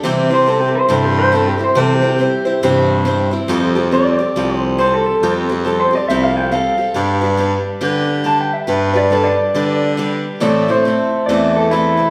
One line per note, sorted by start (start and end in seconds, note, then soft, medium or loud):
0.03 0.78 C3 medium
0.03 0.30 C3 medium
0.03 0.30 E3 medium
0.03 0.31 G3 medium
0.03 0.30 C4 medium
0.03 0.29 E4 medium
0.03 0.29 C5 medium
0.30 0.45 G3 soft
0.30 0.46 C4 soft
0.30 0.47 E4 soft
0.30 0.47 C5 soft
0.30 0.47 C5 medium
0.46 0.89 G3 soft
0.46 0.89 C4 medium
0.46 0.89 E4 medium
0.46 0.60 A4 medium
0.46 0.90 C5 medium
0.60 0.75 G4 medium
0.75 0.90 C5 medium
0.89 1.65 G2 medium
0.89 1.33 C3 medium
0.89 1.33 E3 medium
0.89 1.32 G3 medium
0.89 1.32 C4 medium
0.89 1.33 E4 medium
0.89 1.05 A4 medium
0.89 1.35 C5 medium
1.05 1.19 G4 medium
1.18 1.33 C5 medium
1.32 1.59 G3 medium
1.32 1.58 C4 medium
1.32 1.58 E4 medium
1.32 1.47 A4 medium
1.32 1.56 C5 medium
1.48 1.62 G4 medium
1.58 1.74 G3 soft
1.58 1.75 C4 soft
1.58 1.75 E4 soft
1.58 1.75 C5 soft
1.64 1.77 C5 medium
1.75 2.02 C3 medium
1.75 2.31 C3 medium
1.75 2.03 E3 medium
1.75 2.02 G3 medium
1.75 2.01 C4 medium
1.75 2.01 E4 medium
1.75 1.94 A4 medium
1.75 2.00 C5 medium
1.94 2.07 G4 medium
2.01 2.17 G3 soft
2.01 2.18 C4 soft
2.01 2.19 E4 soft
2.01 2.19 C5 medium
2.09 3.33 G4 medium
2.18 2.46 G3 medium
2.18 2.46 C4 medium
2.18 2.44 E4 medium
2.18 2.44 C5 medium
2.45 2.62 G3 soft
2.45 2.62 C4 soft
2.45 2.62 E4 soft
2.45 2.63 C5 medium
2.63 3.38 G2 medium
2.63 3.06 C3 medium
2.63 3.06 E3 medium
2.63 3.05 G3 medium
2.63 3.05 C4 medium
2.63 3.05 E4 medium
2.63 3.07 C5 medium
3.05 3.32 G3 medium
3.05 3.31 C4 medium
3.05 3.31 E4 medium
3.05 3.30 C5 medium
3.31 3.48 G3 soft
3.31 3.48 C4 medium
3.31 3.50 E4 soft
3.31 3.49 C5 medium
3.48 4.24 F2 medium
3.48 3.75 F3 medium
3.48 3.76 G3 medium
3.48 3.76 C4 loud
3.48 3.75 G4 medium
3.48 3.74 A4 loud
3.75 3.91 C4 soft
3.75 3.92 G4 medium
3.75 3.93 A4 medium
3.92 4.19 G3 medium
3.92 4.19 C4 medium
3.92 4.19 G4 medium
3.92 4.17 A4 medium
3.92 4.56 D5 medium
4.18 4.35 C4 soft
4.18 4.36 G4 soft
4.18 4.36 A4 medium
4.36 5.11 C2 medium
4.36 4.79 F3 medium
4.36 4.78 G3 medium
4.36 4.78 C4 medium
4.36 4.80 G4 medium
4.36 4.79 A4 medium
4.56 4.77 C5 medium
4.78 5.23 G3 medium
4.78 5.22 C4 medium
4.78 5.23 G4 medium
4.78 5.23 A4 medium
4.78 4.93 C5 medium
4.93 5.05 A4 medium
5.06 5.30 A4 medium
5.22 5.97 F2 medium
5.22 5.49 F3 medium
5.22 5.49 G3 medium
5.22 5.50 C4 medium
5.22 5.50 G4 medium
5.22 5.48 A4 medium
5.49 5.64 C4 soft
5.49 5.65 G4 medium
5.49 5.66 A4 medium
5.64 5.92 G3 medium
5.64 5.92 C4 medium
5.64 5.92 G4 medium
5.64 5.79 A4 medium
5.64 5.90 A4 medium
5.80 5.95 C5 medium
5.91 6.09 C4 soft
5.91 6.09 G4 soft
5.91 6.08 A4 medium
5.95 6.08 D5 medium
6.08 6.64 C2 medium
6.08 6.53 F3 medium
6.08 6.51 G3 medium
6.08 6.51 C4 medium
6.08 6.52 G4 medium
6.08 6.52 A4 medium
6.08 6.23 E5 medium
6.23 6.37 F5 medium
6.37 6.51 G5 medium
6.52 6.78 G3 medium
6.52 6.78 C4 medium
6.52 6.77 G4 medium
6.52 6.77 A4 medium
6.52 7.78 F5 medium
6.78 6.95 C4 soft
6.78 6.95 G4 soft
6.78 6.95 A4 medium
6.94 7.70 G2 medium
6.94 7.21 G3 medium
6.94 7.22 D4 medium
6.94 7.21 G4 medium
6.94 7.20 B4 medium
7.21 7.37 D4 soft
7.21 7.38 G4 soft
7.21 7.39 B4 medium
7.37 7.79 G3 medium
7.37 7.80 D4 medium
7.37 7.80 G4 medium
7.37 7.81 B4 medium
7.81 8.57 D3 medium
7.81 8.23 G3 medium
7.81 8.23 D4 medium
7.81 8.24 G4 medium
7.81 8.25 B4 medium
8.24 8.66 G3 medium
8.24 8.67 D4 medium
8.24 8.67 G4 medium
8.24 8.68 B4 medium
8.24 8.40 A5 loud
8.40 8.53 G5 medium
8.53 8.96 E5 loud
8.67 9.43 G2 medium
8.67 8.94 G3 medium
8.67 8.95 D4 medium
8.67 8.94 G4 medium
8.67 8.92 B4 medium
8.93 9.10 D4 soft
8.93 9.11 G4 medium
8.93 9.11 B4 soft
8.93 9.11 D5 medium
9.10 9.53 G3 medium
9.10 9.54 D4 medium
9.10 9.54 G4 medium
9.10 9.26 A4 medium
9.10 9.55 B4 medium
9.24 10.09 D5 loud
9.54 10.30 D3 medium
9.54 9.96 G3 medium
9.54 9.97 D4 medium
9.54 9.98 G4 medium
9.54 9.98 B4 medium
9.97 10.41 G3 medium
9.97 10.41 D4 medium
9.97 10.42 G4 medium
9.97 10.42 B4 medium
10.40 10.67 A2 medium
10.40 10.96 A2 medium
10.40 10.68 E3 medium
10.40 10.68 A3 medium
10.40 10.68 C4 medium
10.40 10.67 E4 medium
10.40 10.67 A4 medium
10.40 10.69 D5 loud
10.68 10.84 A3 soft
10.68 10.85 C4 soft
10.68 10.85 E4 soft
10.68 10.85 A4 medium
10.68 11.26 C5 medium
10.85 11.28 A3 medium
10.85 11.29 C4 medium
10.85 11.30 E4 medium
10.85 11.29 A4 medium
11.26 12.03 E2 medium
11.26 11.72 A2 medium
11.26 12.10 E3 medium
11.26 11.70 A3 medium
11.26 11.72 C4 medium
11.26 11.73 E4 medium
11.26 11.55 D5 medium
11.31 11.72 A4 medium
11.56 11.71 A4 medium
11.71 11.98 A3 medium
11.71 11.98 C4 medium
11.71 12.10 E4 medium
11.71 11.97 E4 medium
11.71 11.96 A4 medium
11.97 12.10 A3 soft
11.97 12.10 C4 soft
11.97 12.10 E4 soft
11.97 12.10 A4 soft